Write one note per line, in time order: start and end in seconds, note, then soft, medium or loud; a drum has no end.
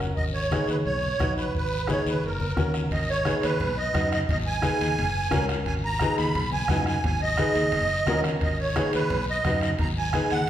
0.00 0.10 F#1 medium
0.00 bombo rim medium
0.00 short guiro medium
0.17 0.58 G#1 loud
0.17 0.25 D#5 medium
0.17 bombo low medium
0.17 long guiro medium
0.34 0.69 C#5 medium
0.51 0.75 D#4 medium
0.51 0.76 G#4 medium
0.51 0.76 B4 medium
0.51 bombo rim medium
0.51 high conga medium
0.51 short guiro medium
0.68 0.82 D#2 medium
0.68 0.76 B4 medium
0.68 short guiro medium
0.85 1.13 B1 medium
0.85 1.33 C#5 loud
0.85 long guiro medium
1.03 high conga medium
1.19 1.48 A#1 medium
1.19 1.44 D#4 medium
1.19 1.44 F#4 medium
1.19 1.44 B4 medium
1.19 bombo low medium
1.19 bombo rim medium
1.19 high conga medium
1.19 short guiro medium
1.37 1.53 B4 medium
1.37 short guiro medium
1.54 1.96 G#1 medium
1.54 1.91 B4 medium
1.54 bombo low medium
1.54 long guiro medium
1.87 2.12 D#4 medium
1.87 2.12 G#4 medium
1.87 2.13 B4 medium
1.87 2.07 C#5 medium
1.87 bombo rim medium
1.87 high conga medium
1.87 short guiro medium
2.06 2.20 D#2 medium
2.06 2.25 B4 medium
2.06 short guiro medium
2.24 2.51 F#1 medium
2.24 2.72 A#4 medium
2.24 long guiro medium
2.40 high conga medium
2.57 2.85 D#2 medium
2.57 2.81 C#4 medium
2.57 2.81 F#4 medium
2.57 2.82 A#4 medium
2.57 bombo low medium
2.57 bombo rim medium
2.57 high conga medium
2.57 short guiro medium
2.74 bombo rim medium
2.74 short guiro medium
2.91 3.33 G#1 medium
2.91 3.10 D#5 medium
2.91 bombo low medium
2.91 high timbale medium
2.91 long guiro medium
3.10 3.45 C#5 medium
3.25 3.50 D#4 medium
3.25 3.50 G#4 medium
3.25 3.50 B4 medium
3.25 bombo rim medium
3.25 high conga medium
3.25 high timbale medium
3.25 short guiro medium
3.43 3.57 D#2 medium
3.43 3.79 B4 medium
3.43 high timbale medium
3.43 short guiro medium
3.60 3.88 B1 medium
3.60 low conga medium
3.60 high timbale medium
3.60 long guiro medium
3.78 4.10 D#5 medium
3.94 4.22 F#2 medium
3.94 4.18 D#4 medium
3.94 4.19 F#4 medium
3.94 4.19 B4 medium
3.94 bombo low medium
3.94 bombo rim medium
3.94 high conga medium
3.94 high timbale medium
3.94 short guiro medium
4.12 4.21 D#5 medium
4.12 bombo rim medium
4.12 high timbale medium
4.12 short guiro medium
4.29 4.70 G#1 loud
4.29 4.38 D#5 medium
4.29 bombo low medium
4.29 low conga medium
4.29 high timbale medium
4.29 long guiro medium
4.47 5.46 G#5 loud
4.62 4.87 D#4 medium
4.62 4.87 G#4 medium
4.62 4.87 B4 medium
4.62 bombo rim medium
4.62 high conga medium
4.62 high timbale medium
4.62 short guiro medium
4.81 4.95 D#2 medium
4.81 high timbale medium
4.81 short guiro medium
4.98 5.26 F#1 medium
4.98 low conga medium
4.98 high timbale medium
4.98 long guiro medium
5.31 5.60 C#2 medium
5.31 5.56 C#4 medium
5.31 5.56 F#4 medium
5.31 5.56 A#4 medium
5.31 bombo low medium
5.31 bombo rim medium
5.31 high conga medium
5.31 low conga medium
5.31 high timbale medium
5.31 low timbale medium
5.31 short guiro medium
5.49 bombo rim medium
5.49 high timbale medium
5.49 short guiro medium
5.66 6.08 G#1 medium
5.66 5.74 G#5 medium
5.66 bombo low medium
5.66 high timbale medium
5.66 long guiro medium
5.85 6.16 A#5 loud
5.99 6.25 D#4 medium
5.99 6.25 G#4 medium
5.99 6.26 B4 medium
5.99 bombo rim medium
5.99 high conga medium
5.99 high timbale medium
5.99 short guiro medium
6.18 6.32 D#2 medium
6.18 6.50 B5 loud
6.18 high timbale medium
6.18 short guiro medium
6.35 6.62 B1 medium
6.35 low conga medium
6.35 high timbale medium
6.35 long guiro medium
6.53 6.85 G#5 loud
6.53 high conga medium
6.68 6.97 F#2 medium
6.68 6.94 D#4 medium
6.68 6.94 F#4 medium
6.68 6.94 B4 medium
6.68 bombo low medium
6.68 bombo rim medium
6.68 high conga medium
6.68 high timbale medium
6.68 low timbale medium
6.68 short guiro medium
6.86 7.04 G#5 medium
6.86 bombo rim medium
6.86 high timbale medium
6.86 short guiro medium
7.03 7.45 G#1 medium
7.03 7.21 G#5 medium
7.03 bombo low medium
7.03 low conga medium
7.03 high timbale medium
7.03 long guiro medium
7.22 8.21 D#5 loud
7.37 7.62 D#4 medium
7.37 7.63 G#4 medium
7.37 7.63 B4 medium
7.37 bombo rim medium
7.37 high conga medium
7.37 high timbale medium
7.37 short guiro medium
7.55 7.69 D#2 medium
7.55 high timbale medium
7.55 short guiro medium
7.72 8.00 F#1 medium
7.72 low conga medium
7.72 high timbale medium
7.72 long guiro medium
8.06 8.34 D#2 medium
8.06 8.32 C#4 medium
8.06 8.32 F#4 medium
8.06 8.32 A#4 medium
8.06 bombo low medium
8.06 bombo rim medium
8.06 high conga medium
8.06 high timbale medium
8.06 low timbale medium
8.06 short guiro medium
8.24 bombo rim medium
8.24 high timbale medium
8.24 short guiro medium
8.41 8.83 G#1 medium
8.41 8.58 D#5 medium
8.41 bombo low medium
8.41 high timbale medium
8.41 long guiro medium
8.60 8.91 C#5 medium
8.75 9.00 D#4 medium
8.75 9.00 G#4 medium
8.75 9.00 B4 medium
8.75 bombo rim medium
8.75 high conga medium
8.75 high timbale medium
8.75 short guiro medium
8.93 9.08 D#2 medium
8.93 9.26 B4 loud
8.93 high timbale medium
8.93 short guiro medium
9.10 9.39 B1 medium
9.10 low conga medium
9.10 high timbale medium
9.10 long guiro medium
9.29 9.60 D#5 loud
9.44 9.72 F#2 medium
9.44 9.69 D#4 medium
9.44 9.69 F#4 medium
9.44 9.70 B4 medium
9.44 bombo low medium
9.44 bombo rim medium
9.44 high conga medium
9.44 high timbale medium
9.44 short guiro medium
9.61 9.71 D#5 medium
9.61 bombo rim medium
9.61 high timbale medium
9.61 short guiro medium
9.79 10.20 G#1 loud
9.79 9.89 A#5 medium
9.79 bombo low medium
9.79 low conga medium
9.79 high timbale medium
9.79 long guiro medium
9.98 10.33 G#5 medium
10.13 10.38 D#4 medium
10.13 10.38 G#4 medium
10.13 10.38 B4 medium
10.13 bombo rim medium
10.13 high conga medium
10.13 high timbale medium
10.13 short guiro medium
10.30 10.45 D#2 medium
10.30 10.50 F#5 medium
10.30 high timbale medium
10.30 short guiro medium